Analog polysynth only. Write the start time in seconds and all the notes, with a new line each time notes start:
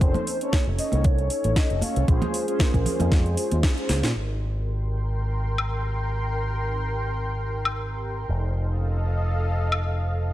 0.01 C#4 D#4 A4 C5
0.40 C#4 D#4 A4 C#5
2.08 C#4 F4 G#4 C5
2.47 C#4 F4 G#4 C5
4.15 C4 D#4 G4 A#4
4.54 C4 D#4 G4 A#4
6.21 C4 D#4 G4 A#4
6.60 C4 D#4 G4 A#4
8.28 C#4 D#4 A4 C5
8.68 C#4 D#4 A4 C5